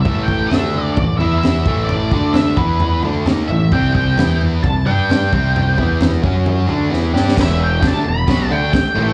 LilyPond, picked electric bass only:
\new Staff \with { instrumentName = "Picked electric bass" } { \clef bass \time 4/4 \key e \minor \tempo 4 = 132 a,,4 d,4 a,,8 e,4 a,,8~ | a,,8 d,4 e,4 d,8 dis,8 a,,8 | c,4 e,4 c,8 g,4 c,8~ | c,8 e,4 fis,4 d,8 e,8 g,8 |
e,,4 d,8 e,,8 b,,8 d,8 r8 a,,8 | }